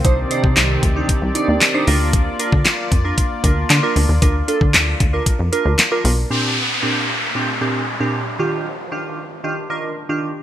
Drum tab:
HH |x-x-x-x-x-x-x-o-|x-x-x-x-x-x-x-o-|x-x-x-x-x-x-x-o-|----------------|
CP |----x-------x---|----x-------x---|----x-------x---|----------------|
SD |----o-------o---|----o-------o---|----o-------o---|----------------|
BD |o--o--o-o-------|o--o--o-o-o-----|o--o--o-o-------|----------------|

HH |----------------|
CP |----------------|
SD |----------------|
BD |----------------|